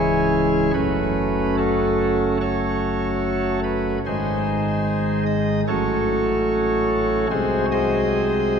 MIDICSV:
0, 0, Header, 1, 2, 480
1, 0, Start_track
1, 0, Tempo, 819672
1, 437, Time_signature, 4, 2, 24, 8
1, 5033, End_track
2, 0, Start_track
2, 0, Title_t, "Pipe organ"
2, 0, Program_c, 0, 19
2, 0, Note_on_c, 0, 25, 76
2, 0, Note_on_c, 0, 37, 65
2, 0, Note_on_c, 0, 52, 55
2, 0, Note_on_c, 0, 56, 58
2, 0, Note_on_c, 0, 61, 57
2, 0, Note_on_c, 0, 64, 93
2, 0, Note_on_c, 0, 68, 84
2, 0, Note_on_c, 0, 73, 113
2, 412, Note_off_c, 0, 37, 0
2, 413, Note_off_c, 0, 52, 0
2, 414, Note_off_c, 0, 56, 0
2, 414, Note_off_c, 0, 61, 0
2, 414, Note_off_c, 0, 73, 0
2, 415, Note_off_c, 0, 25, 0
2, 415, Note_off_c, 0, 64, 0
2, 415, Note_off_c, 0, 68, 0
2, 432, Note_on_c, 0, 42, 76
2, 432, Note_on_c, 0, 54, 60
2, 433, Note_on_c, 0, 71, 106
2, 434, Note_on_c, 0, 57, 62
2, 434, Note_on_c, 0, 61, 60
2, 436, Note_on_c, 0, 30, 67
2, 907, Note_off_c, 0, 71, 0
2, 915, Note_off_c, 0, 61, 0
2, 923, Note_on_c, 0, 69, 120
2, 925, Note_on_c, 0, 66, 86
2, 927, Note_on_c, 0, 61, 93
2, 1388, Note_off_c, 0, 69, 0
2, 1389, Note_off_c, 0, 66, 0
2, 1390, Note_off_c, 0, 61, 0
2, 1410, Note_on_c, 0, 73, 105
2, 1411, Note_on_c, 0, 66, 88
2, 1415, Note_on_c, 0, 69, 82
2, 2102, Note_off_c, 0, 73, 0
2, 2103, Note_off_c, 0, 66, 0
2, 2105, Note_off_c, 0, 69, 0
2, 2128, Note_on_c, 0, 71, 100
2, 2329, Note_off_c, 0, 71, 0
2, 2334, Note_off_c, 0, 42, 0
2, 2335, Note_off_c, 0, 54, 0
2, 2335, Note_off_c, 0, 57, 0
2, 2337, Note_off_c, 0, 30, 0
2, 2378, Note_on_c, 0, 51, 61
2, 2378, Note_on_c, 0, 56, 59
2, 2378, Note_on_c, 0, 68, 73
2, 2379, Note_on_c, 0, 44, 73
2, 2379, Note_on_c, 0, 63, 71
2, 2379, Note_on_c, 0, 72, 100
2, 2381, Note_on_c, 0, 32, 72
2, 3062, Note_off_c, 0, 68, 0
2, 3062, Note_off_c, 0, 72, 0
2, 3063, Note_off_c, 0, 63, 0
2, 3080, Note_on_c, 0, 75, 107
2, 3280, Note_off_c, 0, 75, 0
2, 3298, Note_off_c, 0, 44, 0
2, 3298, Note_off_c, 0, 51, 0
2, 3298, Note_off_c, 0, 56, 0
2, 3299, Note_off_c, 0, 32, 0
2, 3324, Note_on_c, 0, 73, 106
2, 3325, Note_on_c, 0, 57, 58
2, 3326, Note_on_c, 0, 54, 61
2, 3326, Note_on_c, 0, 61, 60
2, 3327, Note_on_c, 0, 33, 70
2, 3327, Note_on_c, 0, 45, 76
2, 3327, Note_on_c, 0, 69, 86
2, 3330, Note_on_c, 0, 66, 88
2, 4253, Note_off_c, 0, 73, 0
2, 4254, Note_off_c, 0, 57, 0
2, 4254, Note_off_c, 0, 61, 0
2, 4255, Note_off_c, 0, 33, 0
2, 4255, Note_off_c, 0, 45, 0
2, 4255, Note_off_c, 0, 54, 0
2, 4255, Note_off_c, 0, 69, 0
2, 4257, Note_off_c, 0, 66, 0
2, 4278, Note_on_c, 0, 48, 71
2, 4278, Note_on_c, 0, 60, 59
2, 4279, Note_on_c, 0, 54, 60
2, 4279, Note_on_c, 0, 68, 91
2, 4279, Note_on_c, 0, 72, 116
2, 4281, Note_on_c, 0, 56, 61
2, 4283, Note_on_c, 0, 36, 75
2, 4283, Note_on_c, 0, 66, 82
2, 4479, Note_off_c, 0, 68, 0
2, 4479, Note_off_c, 0, 72, 0
2, 4482, Note_off_c, 0, 66, 0
2, 4517, Note_on_c, 0, 68, 86
2, 4517, Note_on_c, 0, 75, 118
2, 4519, Note_on_c, 0, 72, 84
2, 5033, Note_off_c, 0, 36, 0
2, 5033, Note_off_c, 0, 48, 0
2, 5033, Note_off_c, 0, 54, 0
2, 5033, Note_off_c, 0, 56, 0
2, 5033, Note_off_c, 0, 60, 0
2, 5033, Note_off_c, 0, 68, 0
2, 5033, Note_off_c, 0, 72, 0
2, 5033, Note_off_c, 0, 75, 0
2, 5033, End_track
0, 0, End_of_file